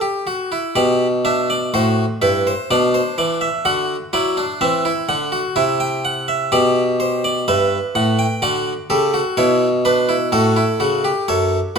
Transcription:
harpsichord
Already playing: D3 F#5
0.01 G4
0.27 F#4
0.52 E4
0.76 B2 G4 D5
1.25 D4 E5
1.50 D5
1.74 A2 F#4 C5
2.22 G2 E4 B4
2.47 C5
2.71 B2 D4 D5
2.94 C5
3.18 E3 D5
3.41 E5
3.65 D3 F#4 F#5
4.13 F#3 E4 D5
4.37 D4
4.61 E3 C4 E5
4.85 E4
5.09 D3 F#5
5.32 F#4
5.56 C3 E4 E5
5.80 G5
6.05 F#5
6.28 E5
6.52 B2 G4 D5
7.00 C5
7.24 D5
7.48 G2 B4 E5
7.95 A2 F#5
8.19 G5
8.42 D3 F#4 D5
8.90 C#3 G4 A4
9.14 F#4
9.37 B2 E4 C#5
9.85 D4 B4
10.09 E4
10.32 A2 F#4 A4
10.56 E4
10.80 C#3 F#4
11.05 G4
11.28 F#2 A4 C#5

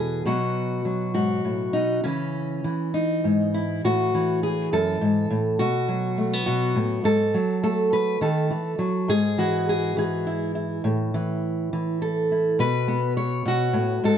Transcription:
steel-string acoustic guitar
Already playing: E2 B2 E3 B3 G#4
0.26 B2 F#3 B3 D#4 F#4
0.85 F#3
1.14 G#2 F#4
1.45 A2
1.73 B2 D#4
2.04 C#3 E3 C#4
2.64 E3
2.94 D#4
3.24 G#2
3.54 E4
3.84 A2 F#4
4.15 E3
4.43 G#4
4.73 F#2 A4
5.01 G#2
5.30 A2
5.59 B2 F#4
5.88 F#3
6.18 A3
6.33 B3
6.46 B2 F#4
6.75 A2
7.04 G#2 A4
7.34 F#3
7.63 A3 A4
7.93 B4
8.21 D#3 A4
8.50 E3
8.79 F#3
9.08 G#2 G#4
9.38 E3 F#4
9.69 G#4
9.97 E3 G#4
10.27 E4
10.55 E4
10.84 A2
11.14 E3
11.73 E3
12.02 A4
12.32 E4
12.59 B2 B4
12.88 B3
13.17 C#5
13.46 B2 F#4
13.73 A2
14.04 G#2 A4

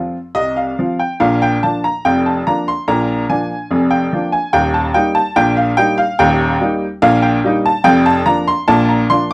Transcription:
upright piano
Already playing: F3 C4 F4
0.35 C2 C3 D#5
0.56 F5
0.79 F3 C4 F4
0.99 G5
1.20 A#1 A#2 F5
1.42 G5
1.63 F3 A#3 D4 A5
1.84 A#5
2.05 F1 F2 G5
2.26 A5
2.47 F3 A#3 D4 A#5
2.68 C6
2.88 A#1 A#2 A#5
3.30 F3 A#3 D4 G#5
3.71 F1 F2
3.91 G5
4.13 F3 A#3 D4
4.32 G#5
4.53 D#1 D#2 G5
4.74 A5
4.94 G3 A#3 D#4 G5
5.15 A5
5.36 A#1 A#2 G5
5.57 F5
5.77 G3 A#3 D#4 G5
5.98 F5
6.19 D#1 D#2 G5
6.61 G3 A#3 D#4
7.02 A#1 A#2 F5
7.22 G5
7.44 G3 A#3 D#4
7.66 A5
7.84 F1 F2 G5
8.06 A5
8.26 F3 A#3 D4 A#5
8.48 C6
8.68 A#1 A#2 A5
8.89 A#5
9.10 F3 A#3 D4 C6

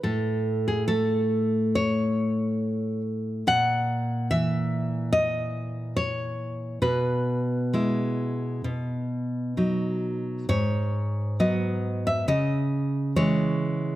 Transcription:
nylon-string guitar
0.03 A2 A4
0.68 G#4
0.88 A3 A4
1.75 C#5
3.47 A#2 F#5
4.31 E3 E5
5.13 D#5
5.97 C#5
6.82 B2 B4
7.73 G#3 E4
8.64 B2
9.57 F#3 D#4
10.49 G#2 C#5
11.40 F#3 B3 D#5
12.07 E5
12.28 C#3 D#5
13.16 E3 G#3 C#5

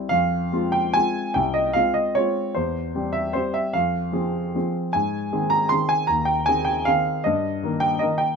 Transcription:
grand piano
0.09 F2 F5
0.52 G#3 C4 F4
0.72 G5
0.94 G#3 C4 F4 G#5
1.34 C2 G5
1.54 D#5
1.73 G#3 C4 F4 F5
1.94 D#5
2.15 G#3 C4 F4 C#5
2.55 E2 C5
2.95 G3 C4 G4
3.13 E5
3.33 G3 C4 G4 C5
3.54 E5
3.73 F2 F5
4.13 F3 C4 G#4
4.55 F3 C4 G#4
4.93 G#2 G#5
5.32 D#3 C4 G#4
5.50 A#5
5.69 D#3 C4 G#4 C6
5.89 G#5
6.07 D#2 A#5
6.25 G5
6.46 D#3 C4 G#4 G#5
6.65 G5
6.85 D#3 C4 G#4 F5
7.24 G2 D#5
7.63 D#3 A#3 A#4
7.80 G5
7.99 D#3 A#3 A#4 D#5
8.18 G5

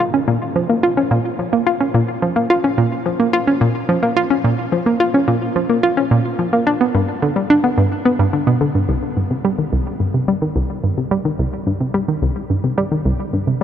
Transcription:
synth arpeggio sound
0.00 F4
0.14 C#4
0.28 A#2
0.56 F3
0.69 A#3
0.83 F4
0.97 C#4
1.11 A#2
1.39 F3
1.53 A#3
1.67 F4
1.81 C#4
1.94 A#2
2.22 F3
2.36 A#3
2.50 F4
2.64 C#4
2.78 A#2
3.06 F3
3.20 A#3
3.33 F4
3.47 C#4
3.61 A#2
3.89 F3
4.03 A#3
4.17 F4
4.30 C#4
4.44 A#2
4.72 F3
4.86 A#3
5.00 F4
5.14 C#4
5.28 A#2
5.56 F3
5.70 A#3
5.83 F4
5.97 C#4
6.11 A#2
6.39 F3
6.53 A#3
6.67 D4
6.81 B3
6.95 G2
7.22 D3
7.36 G3
7.50 D4
7.64 B3
7.78 G2
8.05 B3
8.19 G2
8.33 D3
8.47 B2
8.61 D3
8.75 G2
8.89 C2
9.17 G2
9.31 C3
9.45 G3
9.58 D#3
9.73 C2
10.00 G2
10.14 C3
10.28 G3
10.42 D#3
10.56 C2
10.84 G2
10.97 C3
11.11 G3
11.25 D#3
11.39 C2
11.67 G2
11.81 C3
11.94 G3
12.08 D#3
12.22 C2
12.50 G2
12.64 C3
12.78 G3
12.92 D#3
13.05 C2
13.33 G2
13.47 C3

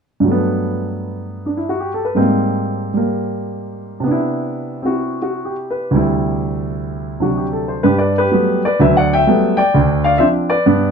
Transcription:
grand piano
0.20 G2
0.24 F#3 A3
0.31 B3
1.46 D4
1.57 E4
1.69 F#4
1.80 G4
1.94 A4
2.05 B4
2.15 G#2 G3 A#3 C4
2.94 G3 A#3
4.00 C3 B3
4.07 D4
4.11 E4
4.82 C4 E4 F#4
5.22 F#4
5.45 G4
5.71 B4
5.91 D2 C3 G3
5.96 E4
7.20 C3 F#3 D4 F#4
7.37 G4
7.53 A4
7.68 C5
7.83 G2 G4 B4
7.98 B4 D5
8.18 G4 B4
8.31 F#3 G3 A3 B3
8.65 B4 D5
8.80 D2 F#3 B4 E5
8.97 D5 F#5
9.13 E5 G5
9.27 F#3 G3 A3 B3
9.57 D5 G5
9.74 D2 D3
10.04 D5 F5
10.18 F3 C4 D4 C5 E5
10.50 B4 D5
10.66 G2 B3

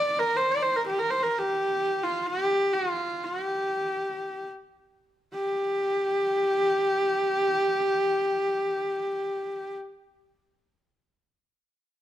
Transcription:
horsehead fiddle
Already playing: D5
0.19 A#4
0.37 C5
0.51 D5
0.62 C5
0.76 A#4
0.87 G4
0.99 A#4
1.11 C5
1.23 A#4
1.39 G4
2.04 F4
2.27 G4
2.73 F#4
2.90 F4
3.24 F#4
3.42 G4
5.34 G4

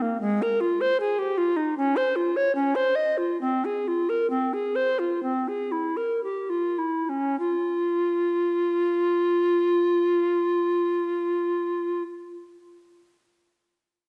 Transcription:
recorder
0.02 A#3
0.21 G#3
0.42 A#4
0.61 F4
0.81 C5
1.00 G#4
1.19 G4
1.38 F4
1.57 D#4
1.77 C#4
1.96 C5
2.16 F4
2.36 C#5
2.55 C#4
2.75 C5
2.95 D#5
3.18 F4
3.41 C4
3.65 G#4
3.88 F4
4.09 A#4
4.30 C4
4.54 G#4
4.76 C5
4.99 F4
5.23 C4
5.48 G#4
5.72 E4
5.97 A#4
6.24 G4
6.50 F4
6.78 E4
7.09 C#4
7.39 F4

